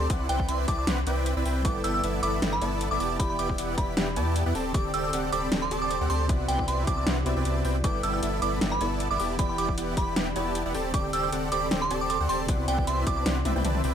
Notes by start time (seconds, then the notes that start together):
0.10 C2 C4 E4 B4 F#5, kick, closed hi-hat
0.29 C2 C4 E4 B4 D5 F#5 G5, closed hi-hat
0.40 kick
0.48 C2 C4 E4 B4 D5 E5 C6, closed hi-hat
0.68 C2 C4 E4 B4 D5 A5 D6, kick, closed hi-hat
0.79 D6
0.87 C2 C4 E4 B4 D5 F#5, snare, closed hi-hat
1.06 C2 C4 E4 B4 D5 G5, closed hi-hat
1.26 closed hi-hat
1.36 C2 C4 E4 B4 D5 E5
1.45 C2 C4 E4 B4 D5 G5, open hi-hat
1.63 G1 G3 B3 E4 A4 D5 G5 D6, kick, closed hi-hat
1.67 B4
1.84 G1 B3 E4 A4 D5 G5 E6, closed hi-hat
1.94 E6
2.03 G1 B3 E4 A4 D5 E5, closed hi-hat
2.23 G1 B3 E4 A4 D5 B5 D6, closed hi-hat
2.42 G1 B3 E4 A4 D5 G5, snare, closed hi-hat
2.53 B5
2.61 G1 B3 E4 A4 D5 A5, closed hi-hat
2.81 closed hi-hat
2.91 G1 B3 E4 A4 D5 E5 D6
3.00 E1 B3 E4 G4 D5 A5 D6, open hi-hat
3.18 E1 E3 E4 G4 D5 B5, kick, closed hi-hat
3.22 D5
3.30 B5
3.39 E1 B3 E4 G4 D5 G5 D6, closed hi-hat
3.49 kick
3.58 E1 B3 E4 G4 D5 F#5, closed hi-hat
3.77 E1 B3 E4 G4 D5 B5, kick, closed hi-hat
3.97 E1 B3 E4 G4 D5 G5, snare, closed hi-hat
4.16 E2 B3 E4 G4 D5 A5, closed hi-hat
4.36 closed hi-hat
4.46 E2 B3 E4 G4 D5 F#5
4.55 D1 C4 G4 A4 D5 A5, open hi-hat
4.72 D1 D3 C4 G4 A4 D5 G5 D6, kick, closed hi-hat
4.94 D1 C4 G4 A4 D5 G5 E6, closed hi-hat
5.04 E6
5.13 D1 C4 G4 A4 D5 F#5, closed hi-hat
5.32 D1 C4 G4 A4 D5 B5 D6, closed hi-hat
5.52 D1 C4 G4 A4 D5 G5, snare, closed hi-hat
5.62 C6
5.71 D1 C4 G4 A4 D5 A5, closed hi-hat
5.82 D6
5.90 D6, closed hi-hat
6.01 D2 C4 G4 A4 D5 F#5
6.10 D2 C4 G4 A4 D5 A5 C6, open hi-hat
6.27 C2 C3 B3 C4 E4 F#4 B4 D5 F#5, kick, closed hi-hat
6.48 C2 C4 E4 B4 D5 F#5 G5, closed hi-hat
6.59 kick
6.68 C2 C4 E4 B4 D5 E5 C6, closed hi-hat
6.87 C2 C4 E4 B4 D5 A5 D6, kick, closed hi-hat
6.97 D6
7.07 C2 C4 E4 B4 D5 F#5, snare, closed hi-hat
7.24 C2 C3 B3 C4 E4 F#4 B4 D5 E5, closed hi-hat
7.36 C2 C4 E4 B4 D5 G5
7.45 C2 C4 E4 B4 D5 A5, closed hi-hat
7.65 C2 C4 E4 B4 D5 G5, open hi-hat
7.82 G1 G3 B3 E4 A4 B4 D5 G5 D6, kick, closed hi-hat
8.03 G1 B3 E4 A4 D5 G5 E6, closed hi-hat
8.14 E6
8.23 G1 B3 E4 A4 D5 E5, closed hi-hat
8.42 G1 B3 E4 A4 D5 B5 D6, closed hi-hat
8.61 G1 B3 E4 A4 D5 G5, snare, closed hi-hat
8.72 B5
8.81 G1 B3 E4 A4 D5 A5, closed hi-hat
9.00 closed hi-hat
9.10 G1 B3 E4 A4 D5 E5 D6
9.19 E1 B3 E4 G4 D5 A5 D6, open hi-hat
9.37 E1 E3 E4 G4 D5 G5 B5, kick, closed hi-hat
9.49 B5
9.58 E1 B3 E4 G4 D5 G5 D6, closed hi-hat
9.69 kick
9.78 E1 B3 E4 G4 D5 F#5, closed hi-hat
9.97 E1 G4 D5 B5, kick, closed hi-hat
10.16 E1 B3 E4 G4 D5 G5, snare, closed hi-hat
10.36 E1 B3 E4 G4 D5 A5, closed hi-hat
10.55 closed hi-hat
10.66 E1 B3 E4 G4 D5 F#5
10.74 D1 C4 G4 A4 D5 A5, open hi-hat
10.92 D1 D3 C4 G4 A4 D5 G5 D6, kick, closed hi-hat
10.96 D5
11.13 D1 C4 G4 A4 D5 G5 E6, closed hi-hat
11.23 E6
11.32 D1 C4 G4 A4 D5 F#5, closed hi-hat
11.52 D1 C4 G4 A4 D5 B5 D6, closed hi-hat
11.71 D1 C4 G4 A4 D5 G5, snare, closed hi-hat
11.82 C6
11.90 D1 C4 G4 A4 D5 A5, closed hi-hat
12.01 D6
12.10 D6, closed hi-hat
12.20 D2 C4 G4 A4 D5 F#5
12.29 D1 C4 G4 A4 D5 A5 C6, open hi-hat
12.47 C2 C3 B3 C4 E4 F#4 B4 D5 F#5, kick, closed hi-hat
12.68 C2 C4 E4 B4 D5 F#5 G5, closed hi-hat
12.78 kick
12.87 C2 C4 E4 B4 D5 E5 C6, closed hi-hat
13.07 C2 C4 E4 B4 A5 D6, kick, closed hi-hat
13.17 D6
13.26 C2 C4 E4 B4 D5 F#5, snare, closed hi-hat
13.45 C2 C4 E4 B4 D5 E5, closed hi-hat, high tom
13.56 C2 C4 E4 B4 D5 G5, high tom
13.65 C2 C4 E4 B4 D5 A5, closed hi-hat, mid tom
13.75 mid tom
13.84 C2 C4 E4 B4 D5 G5, open hi-hat